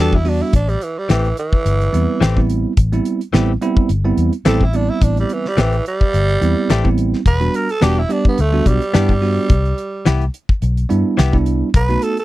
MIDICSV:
0, 0, Header, 1, 6, 480
1, 0, Start_track
1, 0, Tempo, 560329
1, 459, Time_signature, 4, 2, 24, 8
1, 10490, End_track
2, 0, Start_track
2, 0, Title_t, "Tenor saxophone"
2, 0, Program_c, 0, 66
2, 6, Note_on_c, 0, 69, 99
2, 131, Note_on_c, 0, 64, 90
2, 144, Note_off_c, 0, 69, 0
2, 247, Note_on_c, 0, 62, 87
2, 260, Note_off_c, 0, 64, 0
2, 363, Note_on_c, 0, 64, 76
2, 376, Note_off_c, 0, 62, 0
2, 459, Note_off_c, 0, 64, 0
2, 473, Note_on_c, 0, 62, 86
2, 593, Note_on_c, 0, 55, 84
2, 606, Note_off_c, 0, 62, 0
2, 709, Note_on_c, 0, 52, 81
2, 722, Note_off_c, 0, 55, 0
2, 843, Note_on_c, 0, 55, 82
2, 856, Note_off_c, 0, 52, 0
2, 939, Note_off_c, 0, 55, 0
2, 950, Note_on_c, 0, 52, 91
2, 1178, Note_off_c, 0, 52, 0
2, 1193, Note_on_c, 0, 52, 105
2, 2118, Note_off_c, 0, 52, 0
2, 3834, Note_on_c, 0, 69, 97
2, 3971, Note_on_c, 0, 64, 91
2, 3984, Note_off_c, 0, 69, 0
2, 4082, Note_on_c, 0, 62, 90
2, 4095, Note_off_c, 0, 64, 0
2, 4197, Note_on_c, 0, 64, 89
2, 4210, Note_off_c, 0, 62, 0
2, 4316, Note_on_c, 0, 62, 87
2, 4329, Note_off_c, 0, 64, 0
2, 4429, Note_off_c, 0, 62, 0
2, 4452, Note_on_c, 0, 55, 89
2, 4566, Note_on_c, 0, 52, 87
2, 4579, Note_off_c, 0, 55, 0
2, 4694, Note_on_c, 0, 55, 105
2, 4707, Note_off_c, 0, 52, 0
2, 4804, Note_on_c, 0, 52, 96
2, 4817, Note_off_c, 0, 55, 0
2, 5025, Note_off_c, 0, 52, 0
2, 5035, Note_on_c, 0, 55, 116
2, 5958, Note_off_c, 0, 55, 0
2, 6230, Note_on_c, 0, 71, 102
2, 6474, Note_on_c, 0, 70, 92
2, 6487, Note_off_c, 0, 71, 0
2, 6602, Note_on_c, 0, 69, 100
2, 6614, Note_off_c, 0, 70, 0
2, 6711, Note_on_c, 0, 67, 102
2, 6724, Note_off_c, 0, 69, 0
2, 6842, Note_on_c, 0, 64, 90
2, 6855, Note_off_c, 0, 67, 0
2, 6962, Note_on_c, 0, 62, 95
2, 6975, Note_off_c, 0, 64, 0
2, 7072, Note_off_c, 0, 62, 0
2, 7095, Note_on_c, 0, 59, 91
2, 7197, Note_on_c, 0, 57, 100
2, 7210, Note_off_c, 0, 59, 0
2, 7435, Note_on_c, 0, 55, 98
2, 7447, Note_off_c, 0, 57, 0
2, 8832, Note_off_c, 0, 55, 0
2, 10076, Note_on_c, 0, 71, 103
2, 10308, Note_on_c, 0, 69, 106
2, 10320, Note_off_c, 0, 71, 0
2, 10424, Note_off_c, 0, 69, 0
2, 10446, Note_on_c, 0, 69, 93
2, 10490, Note_off_c, 0, 69, 0
2, 10490, End_track
3, 0, Start_track
3, 0, Title_t, "Clean electric guitar"
3, 0, Program_c, 1, 27
3, 0, Note_on_c, 1, 52, 68
3, 0, Note_on_c, 1, 59, 79
3, 0, Note_on_c, 1, 62, 81
3, 0, Note_on_c, 1, 67, 84
3, 130, Note_off_c, 1, 52, 0
3, 134, Note_off_c, 1, 59, 0
3, 136, Note_off_c, 1, 62, 0
3, 138, Note_off_c, 1, 67, 0
3, 935, Note_on_c, 1, 52, 67
3, 943, Note_on_c, 1, 57, 74
3, 948, Note_on_c, 1, 60, 62
3, 951, Note_on_c, 1, 67, 79
3, 1089, Note_off_c, 1, 52, 0
3, 1093, Note_off_c, 1, 57, 0
3, 1095, Note_off_c, 1, 60, 0
3, 1097, Note_off_c, 1, 67, 0
3, 1890, Note_on_c, 1, 52, 83
3, 1898, Note_on_c, 1, 57, 98
3, 1903, Note_on_c, 1, 60, 106
3, 1907, Note_on_c, 1, 67, 95
3, 2046, Note_off_c, 1, 52, 0
3, 2050, Note_off_c, 1, 57, 0
3, 2053, Note_off_c, 1, 60, 0
3, 2055, Note_off_c, 1, 67, 0
3, 2852, Note_on_c, 1, 52, 77
3, 2857, Note_on_c, 1, 57, 75
3, 2863, Note_on_c, 1, 60, 82
3, 2869, Note_on_c, 1, 67, 90
3, 3007, Note_off_c, 1, 52, 0
3, 3010, Note_off_c, 1, 57, 0
3, 3013, Note_off_c, 1, 60, 0
3, 3016, Note_off_c, 1, 67, 0
3, 3815, Note_on_c, 1, 52, 85
3, 3820, Note_on_c, 1, 57, 81
3, 3826, Note_on_c, 1, 60, 85
3, 3831, Note_on_c, 1, 67, 97
3, 3969, Note_off_c, 1, 52, 0
3, 3971, Note_off_c, 1, 57, 0
3, 3974, Note_off_c, 1, 60, 0
3, 3977, Note_off_c, 1, 67, 0
3, 4771, Note_on_c, 1, 52, 67
3, 4780, Note_on_c, 1, 57, 75
3, 4785, Note_on_c, 1, 60, 78
3, 4789, Note_on_c, 1, 67, 79
3, 4927, Note_off_c, 1, 52, 0
3, 4931, Note_off_c, 1, 57, 0
3, 4934, Note_off_c, 1, 60, 0
3, 4936, Note_off_c, 1, 67, 0
3, 5737, Note_on_c, 1, 52, 81
3, 5744, Note_on_c, 1, 57, 103
3, 5749, Note_on_c, 1, 60, 93
3, 5755, Note_on_c, 1, 67, 97
3, 5890, Note_off_c, 1, 52, 0
3, 5893, Note_off_c, 1, 57, 0
3, 5896, Note_off_c, 1, 60, 0
3, 5899, Note_off_c, 1, 67, 0
3, 6696, Note_on_c, 1, 59, 68
3, 6706, Note_on_c, 1, 62, 84
3, 6712, Note_on_c, 1, 67, 82
3, 6849, Note_off_c, 1, 59, 0
3, 6854, Note_off_c, 1, 62, 0
3, 6857, Note_off_c, 1, 67, 0
3, 7656, Note_on_c, 1, 59, 79
3, 7664, Note_on_c, 1, 62, 82
3, 7672, Note_on_c, 1, 67, 91
3, 7809, Note_off_c, 1, 59, 0
3, 7813, Note_off_c, 1, 62, 0
3, 7817, Note_off_c, 1, 67, 0
3, 8614, Note_on_c, 1, 52, 81
3, 8620, Note_on_c, 1, 59, 73
3, 8627, Note_on_c, 1, 64, 83
3, 8629, Note_on_c, 1, 67, 88
3, 8768, Note_off_c, 1, 52, 0
3, 8771, Note_off_c, 1, 59, 0
3, 8774, Note_off_c, 1, 64, 0
3, 8776, Note_off_c, 1, 67, 0
3, 9573, Note_on_c, 1, 52, 83
3, 9581, Note_on_c, 1, 59, 92
3, 9586, Note_on_c, 1, 64, 92
3, 9590, Note_on_c, 1, 67, 108
3, 9727, Note_off_c, 1, 52, 0
3, 9731, Note_off_c, 1, 59, 0
3, 9734, Note_off_c, 1, 64, 0
3, 9736, Note_off_c, 1, 67, 0
3, 10490, End_track
4, 0, Start_track
4, 0, Title_t, "Tine electric piano"
4, 0, Program_c, 2, 4
4, 0, Note_on_c, 2, 55, 75
4, 0, Note_on_c, 2, 59, 61
4, 0, Note_on_c, 2, 62, 65
4, 0, Note_on_c, 2, 66, 84
4, 138, Note_off_c, 2, 55, 0
4, 141, Note_off_c, 2, 59, 0
4, 141, Note_off_c, 2, 62, 0
4, 142, Note_off_c, 2, 66, 0
4, 211, Note_on_c, 2, 59, 63
4, 212, Note_on_c, 2, 55, 64
4, 214, Note_on_c, 2, 62, 61
4, 220, Note_on_c, 2, 66, 74
4, 455, Note_off_c, 2, 55, 0
4, 455, Note_off_c, 2, 59, 0
4, 456, Note_off_c, 2, 62, 0
4, 460, Note_off_c, 2, 66, 0
4, 1650, Note_on_c, 2, 55, 68
4, 1653, Note_on_c, 2, 59, 64
4, 1656, Note_on_c, 2, 60, 57
4, 1660, Note_on_c, 2, 64, 77
4, 1886, Note_off_c, 2, 55, 0
4, 1887, Note_off_c, 2, 59, 0
4, 1888, Note_off_c, 2, 60, 0
4, 1890, Note_off_c, 2, 64, 0
4, 2025, Note_on_c, 2, 55, 80
4, 2028, Note_on_c, 2, 59, 72
4, 2030, Note_on_c, 2, 60, 65
4, 2032, Note_on_c, 2, 64, 84
4, 2329, Note_off_c, 2, 55, 0
4, 2330, Note_off_c, 2, 59, 0
4, 2331, Note_off_c, 2, 60, 0
4, 2332, Note_off_c, 2, 64, 0
4, 2506, Note_on_c, 2, 55, 74
4, 2506, Note_on_c, 2, 59, 66
4, 2510, Note_on_c, 2, 60, 63
4, 2514, Note_on_c, 2, 64, 86
4, 2737, Note_off_c, 2, 55, 0
4, 2737, Note_off_c, 2, 59, 0
4, 2739, Note_off_c, 2, 60, 0
4, 2741, Note_off_c, 2, 64, 0
4, 2856, Note_on_c, 2, 55, 89
4, 2859, Note_on_c, 2, 59, 84
4, 2861, Note_on_c, 2, 60, 78
4, 2864, Note_on_c, 2, 64, 99
4, 3018, Note_off_c, 2, 55, 0
4, 3020, Note_off_c, 2, 59, 0
4, 3021, Note_off_c, 2, 60, 0
4, 3022, Note_off_c, 2, 64, 0
4, 3097, Note_on_c, 2, 55, 92
4, 3098, Note_on_c, 2, 59, 92
4, 3102, Note_on_c, 2, 60, 87
4, 3104, Note_on_c, 2, 64, 110
4, 3329, Note_off_c, 2, 55, 0
4, 3330, Note_off_c, 2, 59, 0
4, 3332, Note_off_c, 2, 60, 0
4, 3333, Note_off_c, 2, 64, 0
4, 3464, Note_on_c, 2, 55, 85
4, 3468, Note_on_c, 2, 59, 85
4, 3469, Note_on_c, 2, 60, 77
4, 3472, Note_on_c, 2, 64, 96
4, 3696, Note_off_c, 2, 55, 0
4, 3698, Note_off_c, 2, 59, 0
4, 3698, Note_off_c, 2, 60, 0
4, 3700, Note_off_c, 2, 64, 0
4, 3813, Note_on_c, 2, 55, 77
4, 3814, Note_on_c, 2, 59, 67
4, 3816, Note_on_c, 2, 60, 72
4, 3820, Note_on_c, 2, 64, 90
4, 3976, Note_off_c, 2, 55, 0
4, 3977, Note_off_c, 2, 59, 0
4, 3978, Note_off_c, 2, 60, 0
4, 3980, Note_off_c, 2, 64, 0
4, 4056, Note_on_c, 2, 55, 66
4, 4056, Note_on_c, 2, 59, 63
4, 4058, Note_on_c, 2, 60, 56
4, 4064, Note_on_c, 2, 64, 74
4, 4680, Note_off_c, 2, 55, 0
4, 4680, Note_off_c, 2, 59, 0
4, 4681, Note_off_c, 2, 60, 0
4, 4684, Note_off_c, 2, 64, 0
4, 5493, Note_on_c, 2, 55, 74
4, 5498, Note_on_c, 2, 59, 65
4, 5498, Note_on_c, 2, 60, 67
4, 5500, Note_on_c, 2, 64, 81
4, 5727, Note_off_c, 2, 55, 0
4, 5729, Note_off_c, 2, 59, 0
4, 5730, Note_off_c, 2, 60, 0
4, 5730, Note_off_c, 2, 64, 0
4, 5857, Note_on_c, 2, 55, 81
4, 5859, Note_on_c, 2, 59, 71
4, 5860, Note_on_c, 2, 60, 78
4, 5864, Note_on_c, 2, 64, 80
4, 6164, Note_off_c, 2, 55, 0
4, 6165, Note_off_c, 2, 59, 0
4, 6166, Note_off_c, 2, 60, 0
4, 6168, Note_off_c, 2, 64, 0
4, 6341, Note_on_c, 2, 55, 68
4, 6342, Note_on_c, 2, 59, 58
4, 6345, Note_on_c, 2, 62, 59
4, 6346, Note_on_c, 2, 66, 71
4, 6574, Note_off_c, 2, 55, 0
4, 6575, Note_off_c, 2, 59, 0
4, 6576, Note_off_c, 2, 62, 0
4, 6577, Note_off_c, 2, 66, 0
4, 6691, Note_on_c, 2, 55, 77
4, 6691, Note_on_c, 2, 59, 65
4, 6695, Note_on_c, 2, 62, 76
4, 6701, Note_on_c, 2, 66, 80
4, 6855, Note_off_c, 2, 55, 0
4, 6855, Note_off_c, 2, 59, 0
4, 6857, Note_off_c, 2, 62, 0
4, 6860, Note_off_c, 2, 66, 0
4, 6931, Note_on_c, 2, 55, 81
4, 6933, Note_on_c, 2, 59, 72
4, 6938, Note_on_c, 2, 62, 81
4, 6939, Note_on_c, 2, 67, 92
4, 7166, Note_off_c, 2, 55, 0
4, 7167, Note_off_c, 2, 59, 0
4, 7169, Note_off_c, 2, 62, 0
4, 7170, Note_off_c, 2, 67, 0
4, 7303, Note_on_c, 2, 55, 73
4, 7306, Note_on_c, 2, 59, 71
4, 7306, Note_on_c, 2, 62, 62
4, 7312, Note_on_c, 2, 66, 80
4, 7535, Note_off_c, 2, 55, 0
4, 7536, Note_off_c, 2, 62, 0
4, 7537, Note_off_c, 2, 59, 0
4, 7539, Note_off_c, 2, 66, 0
4, 7653, Note_on_c, 2, 55, 70
4, 7653, Note_on_c, 2, 59, 74
4, 7656, Note_on_c, 2, 62, 67
4, 7659, Note_on_c, 2, 64, 77
4, 7816, Note_off_c, 2, 55, 0
4, 7816, Note_off_c, 2, 59, 0
4, 7818, Note_off_c, 2, 62, 0
4, 7819, Note_off_c, 2, 64, 0
4, 7893, Note_on_c, 2, 55, 67
4, 7897, Note_on_c, 2, 59, 63
4, 7898, Note_on_c, 2, 62, 56
4, 7899, Note_on_c, 2, 66, 74
4, 8136, Note_off_c, 2, 55, 0
4, 8138, Note_off_c, 2, 59, 0
4, 8138, Note_off_c, 2, 62, 0
4, 8139, Note_off_c, 2, 66, 0
4, 9331, Note_on_c, 2, 55, 85
4, 9333, Note_on_c, 2, 59, 78
4, 9333, Note_on_c, 2, 62, 75
4, 9338, Note_on_c, 2, 64, 88
4, 9566, Note_off_c, 2, 55, 0
4, 9567, Note_off_c, 2, 59, 0
4, 9567, Note_off_c, 2, 62, 0
4, 9569, Note_off_c, 2, 64, 0
4, 9700, Note_on_c, 2, 55, 81
4, 9704, Note_on_c, 2, 59, 74
4, 9708, Note_on_c, 2, 62, 77
4, 9709, Note_on_c, 2, 64, 93
4, 10006, Note_off_c, 2, 55, 0
4, 10007, Note_off_c, 2, 59, 0
4, 10010, Note_off_c, 2, 62, 0
4, 10010, Note_off_c, 2, 64, 0
4, 10185, Note_on_c, 2, 57, 66
4, 10186, Note_on_c, 2, 59, 57
4, 10188, Note_on_c, 2, 63, 56
4, 10190, Note_on_c, 2, 66, 71
4, 10416, Note_off_c, 2, 57, 0
4, 10416, Note_off_c, 2, 59, 0
4, 10417, Note_off_c, 2, 63, 0
4, 10419, Note_off_c, 2, 66, 0
4, 10490, End_track
5, 0, Start_track
5, 0, Title_t, "Fingered electric bass"
5, 0, Program_c, 3, 33
5, 0, Note_on_c, 3, 40, 89
5, 347, Note_off_c, 3, 40, 0
5, 458, Note_on_c, 3, 33, 96
5, 642, Note_off_c, 3, 33, 0
5, 941, Note_on_c, 3, 33, 87
5, 1124, Note_off_c, 3, 33, 0
5, 1418, Note_on_c, 3, 31, 93
5, 1602, Note_off_c, 3, 31, 0
5, 1659, Note_on_c, 3, 40, 75
5, 1758, Note_off_c, 3, 40, 0
5, 1894, Note_on_c, 3, 33, 98
5, 2264, Note_off_c, 3, 33, 0
5, 2378, Note_on_c, 3, 33, 94
5, 2562, Note_off_c, 3, 33, 0
5, 2857, Note_on_c, 3, 33, 93
5, 3042, Note_off_c, 3, 33, 0
5, 3337, Note_on_c, 3, 31, 98
5, 3522, Note_off_c, 3, 31, 0
5, 3575, Note_on_c, 3, 40, 83
5, 3676, Note_off_c, 3, 40, 0
5, 3815, Note_on_c, 3, 33, 98
5, 4185, Note_off_c, 3, 33, 0
5, 4297, Note_on_c, 3, 33, 98
5, 4482, Note_off_c, 3, 33, 0
5, 4776, Note_on_c, 3, 33, 89
5, 4961, Note_off_c, 3, 33, 0
5, 5260, Note_on_c, 3, 31, 103
5, 5444, Note_off_c, 3, 31, 0
5, 5496, Note_on_c, 3, 40, 82
5, 5597, Note_off_c, 3, 40, 0
5, 5738, Note_on_c, 3, 33, 96
5, 6106, Note_off_c, 3, 33, 0
5, 6217, Note_on_c, 3, 28, 98
5, 6402, Note_off_c, 3, 28, 0
5, 6702, Note_on_c, 3, 28, 91
5, 6885, Note_off_c, 3, 28, 0
5, 7186, Note_on_c, 3, 38, 99
5, 7367, Note_off_c, 3, 38, 0
5, 7418, Note_on_c, 3, 35, 83
5, 7518, Note_off_c, 3, 35, 0
5, 7664, Note_on_c, 3, 43, 96
5, 8030, Note_off_c, 3, 43, 0
5, 8139, Note_on_c, 3, 36, 100
5, 8323, Note_off_c, 3, 36, 0
5, 8624, Note_on_c, 3, 36, 84
5, 8806, Note_off_c, 3, 36, 0
5, 9101, Note_on_c, 3, 35, 104
5, 9284, Note_off_c, 3, 35, 0
5, 9347, Note_on_c, 3, 43, 84
5, 9443, Note_off_c, 3, 43, 0
5, 9584, Note_on_c, 3, 36, 101
5, 9950, Note_off_c, 3, 36, 0
5, 10059, Note_on_c, 3, 35, 96
5, 10243, Note_off_c, 3, 35, 0
5, 10490, End_track
6, 0, Start_track
6, 0, Title_t, "Drums"
6, 109, Note_on_c, 9, 36, 76
6, 194, Note_off_c, 9, 36, 0
6, 216, Note_on_c, 9, 46, 73
6, 301, Note_off_c, 9, 46, 0
6, 455, Note_on_c, 9, 42, 85
6, 458, Note_on_c, 9, 36, 111
6, 540, Note_off_c, 9, 42, 0
6, 543, Note_off_c, 9, 36, 0
6, 587, Note_on_c, 9, 42, 38
6, 673, Note_off_c, 9, 42, 0
6, 697, Note_on_c, 9, 42, 58
6, 783, Note_off_c, 9, 42, 0
6, 936, Note_on_c, 9, 42, 81
6, 942, Note_on_c, 9, 38, 100
6, 1022, Note_off_c, 9, 42, 0
6, 1028, Note_off_c, 9, 38, 0
6, 1066, Note_on_c, 9, 42, 32
6, 1152, Note_off_c, 9, 42, 0
6, 1175, Note_on_c, 9, 42, 64
6, 1260, Note_off_c, 9, 42, 0
6, 1307, Note_on_c, 9, 36, 88
6, 1393, Note_off_c, 9, 36, 0
6, 1420, Note_on_c, 9, 42, 89
6, 1506, Note_off_c, 9, 42, 0
6, 1552, Note_on_c, 9, 42, 39
6, 1637, Note_off_c, 9, 42, 0
6, 1661, Note_on_c, 9, 42, 68
6, 1747, Note_off_c, 9, 42, 0
6, 1901, Note_on_c, 9, 42, 84
6, 1907, Note_on_c, 9, 38, 109
6, 1987, Note_off_c, 9, 42, 0
6, 1993, Note_off_c, 9, 38, 0
6, 2027, Note_on_c, 9, 36, 71
6, 2113, Note_off_c, 9, 36, 0
6, 2138, Note_on_c, 9, 42, 60
6, 2223, Note_off_c, 9, 42, 0
6, 2373, Note_on_c, 9, 42, 93
6, 2375, Note_on_c, 9, 36, 108
6, 2459, Note_off_c, 9, 42, 0
6, 2461, Note_off_c, 9, 36, 0
6, 2507, Note_on_c, 9, 42, 43
6, 2593, Note_off_c, 9, 42, 0
6, 2616, Note_on_c, 9, 42, 62
6, 2701, Note_off_c, 9, 42, 0
6, 2750, Note_on_c, 9, 42, 46
6, 2836, Note_off_c, 9, 42, 0
6, 2859, Note_on_c, 9, 42, 78
6, 2865, Note_on_c, 9, 38, 97
6, 2945, Note_off_c, 9, 42, 0
6, 2951, Note_off_c, 9, 38, 0
6, 3098, Note_on_c, 9, 42, 59
6, 3184, Note_off_c, 9, 42, 0
6, 3226, Note_on_c, 9, 36, 96
6, 3312, Note_off_c, 9, 36, 0
6, 3334, Note_on_c, 9, 42, 85
6, 3420, Note_off_c, 9, 42, 0
6, 3577, Note_on_c, 9, 42, 68
6, 3662, Note_off_c, 9, 42, 0
6, 3706, Note_on_c, 9, 42, 41
6, 3792, Note_off_c, 9, 42, 0
6, 3814, Note_on_c, 9, 42, 84
6, 3820, Note_on_c, 9, 38, 115
6, 3900, Note_off_c, 9, 42, 0
6, 3906, Note_off_c, 9, 38, 0
6, 3946, Note_on_c, 9, 36, 74
6, 4032, Note_off_c, 9, 36, 0
6, 4055, Note_on_c, 9, 42, 58
6, 4140, Note_off_c, 9, 42, 0
6, 4297, Note_on_c, 9, 36, 115
6, 4297, Note_on_c, 9, 42, 84
6, 4382, Note_off_c, 9, 36, 0
6, 4382, Note_off_c, 9, 42, 0
6, 4430, Note_on_c, 9, 42, 41
6, 4515, Note_off_c, 9, 42, 0
6, 4535, Note_on_c, 9, 42, 61
6, 4621, Note_off_c, 9, 42, 0
6, 4671, Note_on_c, 9, 38, 37
6, 4757, Note_off_c, 9, 38, 0
6, 4776, Note_on_c, 9, 42, 80
6, 4782, Note_on_c, 9, 38, 110
6, 4861, Note_off_c, 9, 42, 0
6, 4867, Note_off_c, 9, 38, 0
6, 4904, Note_on_c, 9, 42, 33
6, 4990, Note_off_c, 9, 42, 0
6, 5019, Note_on_c, 9, 42, 63
6, 5105, Note_off_c, 9, 42, 0
6, 5147, Note_on_c, 9, 36, 91
6, 5233, Note_off_c, 9, 36, 0
6, 5259, Note_on_c, 9, 42, 80
6, 5345, Note_off_c, 9, 42, 0
6, 5386, Note_on_c, 9, 42, 39
6, 5472, Note_off_c, 9, 42, 0
6, 5499, Note_on_c, 9, 42, 65
6, 5585, Note_off_c, 9, 42, 0
6, 5737, Note_on_c, 9, 42, 85
6, 5743, Note_on_c, 9, 38, 96
6, 5822, Note_off_c, 9, 42, 0
6, 5828, Note_off_c, 9, 38, 0
6, 5867, Note_on_c, 9, 36, 73
6, 5952, Note_off_c, 9, 36, 0
6, 5977, Note_on_c, 9, 42, 62
6, 6063, Note_off_c, 9, 42, 0
6, 6112, Note_on_c, 9, 38, 32
6, 6197, Note_off_c, 9, 38, 0
6, 6216, Note_on_c, 9, 42, 83
6, 6217, Note_on_c, 9, 36, 107
6, 6302, Note_off_c, 9, 42, 0
6, 6303, Note_off_c, 9, 36, 0
6, 6346, Note_on_c, 9, 42, 40
6, 6431, Note_off_c, 9, 42, 0
6, 6461, Note_on_c, 9, 42, 68
6, 6546, Note_off_c, 9, 42, 0
6, 6589, Note_on_c, 9, 42, 44
6, 6674, Note_off_c, 9, 42, 0
6, 6696, Note_on_c, 9, 42, 91
6, 6702, Note_on_c, 9, 38, 104
6, 6782, Note_off_c, 9, 42, 0
6, 6788, Note_off_c, 9, 38, 0
6, 6939, Note_on_c, 9, 42, 68
6, 7024, Note_off_c, 9, 42, 0
6, 7067, Note_on_c, 9, 36, 94
6, 7153, Note_off_c, 9, 36, 0
6, 7177, Note_on_c, 9, 42, 84
6, 7263, Note_off_c, 9, 42, 0
6, 7418, Note_on_c, 9, 36, 76
6, 7419, Note_on_c, 9, 42, 67
6, 7504, Note_off_c, 9, 36, 0
6, 7504, Note_off_c, 9, 42, 0
6, 7551, Note_on_c, 9, 42, 44
6, 7637, Note_off_c, 9, 42, 0
6, 7658, Note_on_c, 9, 42, 85
6, 7664, Note_on_c, 9, 38, 105
6, 7743, Note_off_c, 9, 42, 0
6, 7749, Note_off_c, 9, 38, 0
6, 7787, Note_on_c, 9, 36, 72
6, 7873, Note_off_c, 9, 36, 0
6, 7896, Note_on_c, 9, 46, 71
6, 7981, Note_off_c, 9, 46, 0
6, 8133, Note_on_c, 9, 42, 84
6, 8136, Note_on_c, 9, 36, 112
6, 8219, Note_off_c, 9, 42, 0
6, 8222, Note_off_c, 9, 36, 0
6, 8268, Note_on_c, 9, 42, 35
6, 8353, Note_off_c, 9, 42, 0
6, 8378, Note_on_c, 9, 42, 62
6, 8463, Note_off_c, 9, 42, 0
6, 8616, Note_on_c, 9, 42, 81
6, 8622, Note_on_c, 9, 38, 108
6, 8701, Note_off_c, 9, 42, 0
6, 8707, Note_off_c, 9, 38, 0
6, 8748, Note_on_c, 9, 42, 33
6, 8833, Note_off_c, 9, 42, 0
6, 8858, Note_on_c, 9, 42, 59
6, 8943, Note_off_c, 9, 42, 0
6, 8988, Note_on_c, 9, 36, 90
6, 9073, Note_off_c, 9, 36, 0
6, 9097, Note_on_c, 9, 42, 75
6, 9182, Note_off_c, 9, 42, 0
6, 9229, Note_on_c, 9, 42, 40
6, 9314, Note_off_c, 9, 42, 0
6, 9340, Note_on_c, 9, 42, 65
6, 9426, Note_off_c, 9, 42, 0
6, 9580, Note_on_c, 9, 42, 77
6, 9586, Note_on_c, 9, 38, 109
6, 9666, Note_off_c, 9, 42, 0
6, 9672, Note_off_c, 9, 38, 0
6, 9708, Note_on_c, 9, 36, 71
6, 9794, Note_off_c, 9, 36, 0
6, 9817, Note_on_c, 9, 42, 55
6, 9903, Note_off_c, 9, 42, 0
6, 10057, Note_on_c, 9, 42, 87
6, 10058, Note_on_c, 9, 36, 115
6, 10142, Note_off_c, 9, 42, 0
6, 10144, Note_off_c, 9, 36, 0
6, 10189, Note_on_c, 9, 42, 40
6, 10274, Note_off_c, 9, 42, 0
6, 10296, Note_on_c, 9, 42, 67
6, 10382, Note_off_c, 9, 42, 0
6, 10427, Note_on_c, 9, 42, 42
6, 10490, Note_off_c, 9, 42, 0
6, 10490, End_track
0, 0, End_of_file